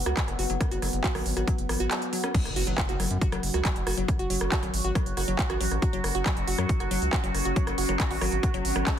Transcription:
Already playing: synth drone F#3 B3, ambient pad F#5
0.06 analog synth bass C#2, synth arpeggio sound F#4, cross-stick, closed hi-hat
0.17 synth arpeggio sound F#3, kick, clap, closed hi-hat
0.28 analog synth bass F#1, cross-stick, closed hi-hat
0.39 analog synth bass F#1, synth arpeggio sound F#4, open hi-hat
0.50 analog synth bass F#1, synth arpeggio sound F#3, closed hi-hat
0.61 kick, cross-stick, closed hi-hat
0.71 analog synth bass F#1, synth arpeggio sound F#4, closed hi-hat
0.82 analog synth bass F#1, synth arpeggio sound F#3, cross-stick, open hi-hat
0.93 analog synth bass F#1, closed hi-hat
1.04 synth arpeggio sound F#4, kick, clap, closed hi-hat
1.15 analog synth bass G#1, synth arpeggio sound F#3, cross-stick, open hi-hat
1.26 analog synth bass G#1, open hi-hat
1.37 analog synth bass G#1, synth arpeggio sound F#4, cross-stick, closed hi-hat
1.48 synth arpeggio sound F#3, kick, closed hi-hat
1.58 analog synth bass F#1, closed hi-hat
1.69 analog synth bass G#1, synth arpeggio sound F3, cross-stick, open hi-hat
1.80 analog synth bass G#1, synth arpeggio sound F#4, closed hi-hat
1.91 synth arpeggio sound F#3, cross-stick, clap, closed hi-hat
2.02 closed hi-hat
2.13 synth arpeggio sound F#3, open hi-hat
2.24 synth arpeggio sound C#4, cross-stick, closed hi-hat
2.34 synth drone F#3 F#4, synth arpeggio sound F#3, ambient pad C#4, kick, closed hi-hat, crash, impact
2.43 analog synth bass F#1, ambient pad F#4, cross-stick, closed hi-hat
2.56 analog synth bass F#1, synth arpeggio sound F#4, open hi-hat
2.67 analog synth bass F#1, synth arpeggio sound F#3, closed hi-hat
2.76 ambient pad F#5, kick, cross-stick, clap, closed hi-hat
2.89 analog synth bass F#1, synth arpeggio sound F#4, closed hi-hat
3.00 analog synth bass F#1, synth arpeggio sound F#3, ambient pad C#6, cross-stick, open hi-hat
3.11 analog synth bass F#2, closed hi-hat
3.21 synth arpeggio sound F#4, kick, closed hi-hat
3.32 analog synth bass F#1, synth arpeggio sound F#3, cross-stick, closed hi-hat
3.43 analog synth bass F#1, open hi-hat
3.54 analog synth bass C#2, synth arpeggio sound F#4, cross-stick, closed hi-hat
3.65 synth arpeggio sound F#3, kick, clap, closed hi-hat
3.76 analog synth bass F#1, closed hi-hat
3.87 analog synth bass F#1, synth arpeggio sound F#4, cross-stick, open hi-hat
3.98 analog synth bass F#1, synth arpeggio sound F#3, closed hi-hat
4.08 kick, cross-stick, closed hi-hat
4.19 analog synth bass F#1, synth arpeggio sound F#4, closed hi-hat
4.30 analog synth bass F#1, synth arpeggio sound F#3, open hi-hat
4.41 analog synth bass F#1, cross-stick, closed hi-hat
4.52 synth arpeggio sound F#4, kick, clap, closed hi-hat
4.63 analog synth bass G#1, synth arpeggio sound F#3, cross-stick, closed hi-hat
4.74 analog synth bass G#1, open hi-hat
4.84 analog synth bass G#1, synth arpeggio sound F#4, closed hi-hat
4.95 synth arpeggio sound F#3, kick, cross-stick, closed hi-hat
5.06 analog synth bass F#1, closed hi-hat
5.17 analog synth bass F#1, synth arpeggio sound F#4, cross-stick, open hi-hat
5.28 analog synth bass F#1, synth arpeggio sound F#3, closed hi-hat
5.39 kick, clap, closed hi-hat
5.50 analog synth bass A1, synth arpeggio sound F#4, cross-stick, closed hi-hat
5.61 analog synth bass A1, synth arpeggio sound F#3, open hi-hat
5.71 analog synth bass A1, cross-stick, closed hi-hat
5.82 synth arpeggio sound F#4, kick, closed hi-hat
5.93 analog synth bass F#1, synth arpeggio sound F#3, closed hi-hat
6.04 analog synth bass F#1, cross-stick, open hi-hat
6.15 analog synth bass F#1, synth arpeggio sound F#4, closed hi-hat
6.26 synth arpeggio sound F#3, kick, cross-stick, clap, closed hi-hat
6.37 analog synth bass F#1, closed hi-hat
6.48 analog synth bass F#1, synth arpeggio sound F#4, open hi-hat
6.58 analog synth bass F#2, synth arpeggio sound F#3, cross-stick, closed hi-hat
6.69 kick, closed hi-hat
6.80 analog synth bass F#1, synth arpeggio sound F#4, cross-stick, closed hi-hat
6.91 analog synth bass F#1, synth arpeggio sound F#3, open hi-hat
7.02 analog synth bass C#2, closed hi-hat
7.13 synth arpeggio sound F#4, kick, cross-stick, clap, closed hi-hat
7.24 analog synth bass F#1, synth arpeggio sound F#3, closed hi-hat
7.34 analog synth bass F#1, cross-stick, open hi-hat
7.45 analog synth bass F#1, synth arpeggio sound F#4, closed hi-hat
7.56 synth arpeggio sound F#3, kick, closed hi-hat
7.67 analog synth bass F#1, cross-stick, closed hi-hat
7.78 analog synth bass F#1, synth arpeggio sound F#4, open hi-hat
7.89 analog synth bass F#1, synth arpeggio sound F#3, cross-stick, closed hi-hat
8.00 kick, clap, closed hi-hat
8.11 analog synth bass G#1, synth arpeggio sound F#4, open hi-hat
8.21 analog synth bass G#1, synth arpeggio sound F#3, cross-stick, open hi-hat
8.32 analog synth bass G#1, closed hi-hat
8.43 synth arpeggio sound F#4, kick, cross-stick, closed hi-hat
8.54 analog synth bass F#1, synth arpeggio sound F#3, closed hi-hat
8.65 analog synth bass G#1, open hi-hat
8.76 analog synth bass G#1, synth arpeggio sound F#3, cross-stick, closed hi-hat
8.87 synth arpeggio sound G#3, kick, clap, closed hi-hat

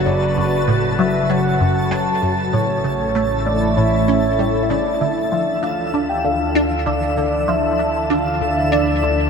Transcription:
Already playing: synth drone F#1, analog synth pad C#3 F#3 F#4 B4, synth texture A4 A5
0.06 synth arpeggio sound F#2, soft synth lead D5
0.37 synth arpeggio sound F#2
0.68 synth arpeggio sound A2
0.99 synth arpeggio sound F#3, soft synth lead E5
1.30 synth arpeggio sound F#3, soft synth lead F#5
1.60 synth arpeggio sound F#2
1.91 synth arpeggio sound F#3, soft synth lead A5
2.22 synth arpeggio sound F#2
2.53 synth drone A1, synth arpeggio sound A2, analog synth pad A3, soft synth lead C#5
2.84 synth arpeggio sound C#3
2.92 analog synth pad A4
3.15 synth arpeggio sound A3, analog synth pad E4
3.27 analog synth pad E5
3.46 synth arpeggio sound A3, soft synth lead D5
3.77 synth arpeggio sound A2, soft synth lead C#5
4.08 synth arpeggio sound C#4
4.39 synth arpeggio sound G3
4.63 soft synth lead E5
4.70 synth arpeggio sound C#3, soft synth lead D5
5.01 synth drone D2, synth arpeggio sound D3, synth texture E3 E6, analog synth pad D4, soft synth lead E5
5.32 synth arpeggio sound F3
5.42 analog synth pad D5
5.63 synth arpeggio sound D4, soft synth lead F5
5.94 synth arpeggio sound D4
6.09 soft synth lead G5
6.25 synth arpeggio sound D3, soft synth lead F5
6.55 synth arpeggio sound D4
6.86 synth arpeggio sound D3, soft synth lead D5
7.02 analog synth pad A5
7.17 synth arpeggio sound D3, soft synth lead D5
7.48 synth arpeggio sound F3, soft synth lead E5
7.79 synth arpeggio sound D4
8.10 synth arpeggio sound D4, soft synth lead F5
8.41 synth arpeggio sound D3
8.57 soft synth lead E5
8.72 synth arpeggio sound D4, soft synth lead D5
9.03 synth arpeggio sound D3

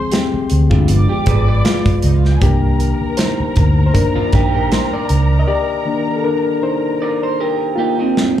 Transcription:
Already playing: reed electric piano F3 G#3 C4 G#4, string section C5 C6
0.12 reed electric piano C4 G4, snare, closed hi-hat
0.34 muted fingered electric bass stroke
0.50 fingered electric bass D2, closed hi-hat
0.70 reed electric piano G#3 F4, clean electric guitar D4 F4, kick
0.88 fingered electric bass G1, reed electric piano F3 G#3 B3, string section D5 D6, closed hi-hat
1.09 clean electric guitar G4
1.26 fingered electric bass G#1, clean electric guitar G#4 B4, kick, closed hi-hat
1.48 clean electric guitar B4 D5
1.65 reed electric piano G#3 F4, snare, closed hi-hat
1.86 kick, closed hi-hat
2.02 fingered electric bass C#2, string section D#4 D#5, closed hi-hat
2.15 string section F4 F5
2.25 string section G4 G5, snare
2.34 string section G#4 G#5
2.41 fingered electric bass C2, reed electric piano D#3 A#3 D4 G4, string section A#4 A#5, kick, closed hi-hat
2.80 closed hi-hat
3.01 muted fingered electric bass stroke
3.17 reed electric piano D#4 C5, snare, closed hi-hat
3.40 muted fingered electric bass stroke
3.56 fingered electric bass D2, kick, closed hi-hat
3.86 reed electric piano C5
3.93 reed electric piano D#3 A#3 D4 A#4, kick, closed hi-hat
4.16 clean electric guitar D4 F4, muted fingered electric bass stroke
4.33 fingered electric bass A#1, clean electric guitar D#4 G4, kick, closed hi-hat
4.54 clean electric guitar G4 A#4
4.72 clean electric guitar C5, snare, closed hi-hat
4.93 clean electric guitar A#4 D5
5.09 fingered electric bass C#2, closed hi-hat
5.39 reed electric piano D#5
5.48 reed electric piano G4 D5
5.85 reed electric piano D#3 A#3 D4
6.17 reed electric piano A4
6.24 reed electric piano D4 A#4
6.63 reed electric piano D#4 C5
7.02 clean electric guitar A#4 D5
7.23 clean electric guitar C5
7.40 clean electric guitar G4 A#4
7.76 reed electric piano A#3 F4, clean electric guitar D#4 G4
7.99 clean electric guitar C4 D#4
8.17 snare

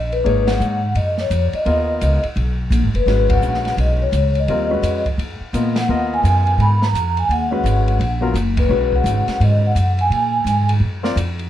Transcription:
Already playing: upright bass A#1
0.12 vibraphone B4, ride
0.24 upright bass G#1, grand piano A#3 D#4 G#4 C#5, ride
0.47 vibraphone F#5, snare, ride
0.60 upright bass G#2, hi-hat pedal
0.95 upright bass F#2, vibraphone D#5, ride
1.18 vibraphone C#5, snare
1.30 upright bass F2, hi-hat pedal, ride
1.47 vibraphone D5
1.53 vibraphone D#5, muted upright bass stroke, ride
1.65 upright bass D#2, grand piano B3 F4 A#4 D#5, ride
2.01 upright bass C#2, hi-hat pedal, ride
2.23 muted upright bass stroke, ride
2.36 upright bass B1, ride
2.70 upright bass A#1, hi-hat pedal, ride
2.83 upright bass G#1
2.94 upright bass F#1, vibraphone B4, ride
3.06 upright bass G#1, grand piano G#3 C#4 F#4 B4, snare, ride
3.30 vibraphone F#5, kick, ride
3.41 upright bass A#1, hi-hat pedal
3.54 snare
3.65 snare, ride
3.77 upright bass B1, vibraphone D#5, ride
4.02 vibraphone C#5
4.12 upright bass C#2, hi-hat pedal, ride
4.35 ride
4.39 vibraphone D#5
4.48 upright bass D#2, grand piano G3 C4 F4 A#4, ride
4.70 grand piano G#3 C#4 F#4 B4
4.82 upright bass F2, hi-hat pedal, ride
5.06 kick, ride
5.17 upright bass F#2, ride
5.40 muted upright bass stroke
5.53 upright bass A#2, grand piano B3 F4 A#4 D#5, hi-hat pedal, ride
5.76 vibraphone F#5, snare, ride
5.89 upright bass D#2, grand piano B3 F4 A#4 D#5
6.14 vibraphone G#5
6.23 upright bass F#2, hi-hat pedal, ride
6.47 ride
6.58 upright bass G#2, vibraphone B5, ride
6.82 vibraphone A#5, snare
6.93 upright bass F2, hi-hat pedal, ride
7.17 vibraphone G#5, ride
7.29 upright bass D#2, vibraphone F#5, ride
7.51 grand piano G#3 C#4 F#4 B4
7.64 upright bass G#1, hi-hat pedal, ride
7.88 ride
8.00 upright bass A#1, ride
8.21 grand piano F#3 B3 F4 A#4
8.34 upright bass F#1, hi-hat pedal, ride
8.57 vibraphone B4, kick, ride
8.69 upright bass B1, grand piano G#3 C#4 F#4 B4
8.93 vibraphone F#5, kick
9.04 upright bass G#1, hi-hat pedal, ride
9.27 muted upright bass stroke, snare, ride
9.40 upright bass G#2, vibraphone D#5, ride
9.66 vibraphone F#5
9.75 upright bass F#2, hi-hat pedal, ride
9.99 vibraphone G#5, ride
10.10 upright bass A#2, ride
10.44 upright bass G#2, hi-hat pedal, ride
10.69 ride
10.80 upright bass F#2
11.03 grand piano C4 F4 A#4 D5, snare
11.16 upright bass F2, hi-hat pedal, ride
11.39 ride

